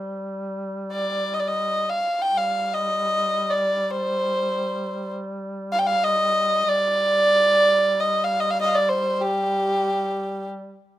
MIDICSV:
0, 0, Header, 1, 3, 480
1, 0, Start_track
1, 0, Tempo, 500000
1, 10549, End_track
2, 0, Start_track
2, 0, Title_t, "Kamancheh"
2, 0, Program_c, 0, 110
2, 878, Note_on_c, 0, 74, 78
2, 1287, Note_on_c, 0, 75, 72
2, 1302, Note_off_c, 0, 74, 0
2, 1336, Note_on_c, 0, 74, 66
2, 1350, Note_off_c, 0, 75, 0
2, 1420, Note_on_c, 0, 75, 76
2, 1434, Note_off_c, 0, 74, 0
2, 1820, Note_on_c, 0, 77, 75
2, 1834, Note_off_c, 0, 75, 0
2, 2129, Note_on_c, 0, 79, 84
2, 2143, Note_off_c, 0, 77, 0
2, 2275, Note_on_c, 0, 77, 77
2, 2289, Note_off_c, 0, 79, 0
2, 2634, Note_on_c, 0, 75, 81
2, 2649, Note_off_c, 0, 77, 0
2, 3355, Note_on_c, 0, 74, 69
2, 3370, Note_off_c, 0, 75, 0
2, 3751, Note_on_c, 0, 72, 76
2, 3766, Note_off_c, 0, 74, 0
2, 4924, Note_off_c, 0, 72, 0
2, 5493, Note_on_c, 0, 77, 86
2, 5556, Note_on_c, 0, 79, 69
2, 5570, Note_off_c, 0, 77, 0
2, 5631, Note_on_c, 0, 77, 93
2, 5646, Note_off_c, 0, 79, 0
2, 5800, Note_on_c, 0, 75, 100
2, 5814, Note_off_c, 0, 77, 0
2, 6419, Note_on_c, 0, 74, 103
2, 6433, Note_off_c, 0, 75, 0
2, 7682, Note_on_c, 0, 75, 83
2, 7696, Note_off_c, 0, 74, 0
2, 7908, Note_on_c, 0, 77, 81
2, 7923, Note_off_c, 0, 75, 0
2, 8063, Note_on_c, 0, 75, 79
2, 8078, Note_off_c, 0, 77, 0
2, 8163, Note_on_c, 0, 77, 78
2, 8178, Note_off_c, 0, 75, 0
2, 8258, Note_off_c, 0, 77, 0
2, 8264, Note_on_c, 0, 75, 76
2, 8307, Note_on_c, 0, 77, 65
2, 8321, Note_off_c, 0, 75, 0
2, 8333, Note_on_c, 0, 75, 79
2, 8347, Note_off_c, 0, 77, 0
2, 8397, Note_on_c, 0, 74, 78
2, 8411, Note_off_c, 0, 75, 0
2, 8530, Note_on_c, 0, 72, 76
2, 8545, Note_off_c, 0, 74, 0
2, 8846, Note_on_c, 0, 67, 82
2, 8861, Note_off_c, 0, 72, 0
2, 10060, Note_off_c, 0, 67, 0
2, 10549, End_track
3, 0, Start_track
3, 0, Title_t, "Duduk"
3, 0, Program_c, 1, 69
3, 0, Note_on_c, 1, 55, 57
3, 2032, Note_off_c, 1, 55, 0
3, 2195, Note_on_c, 1, 55, 56
3, 6380, Note_off_c, 1, 55, 0
3, 6386, Note_on_c, 1, 55, 61
3, 10419, Note_off_c, 1, 55, 0
3, 10549, End_track
0, 0, End_of_file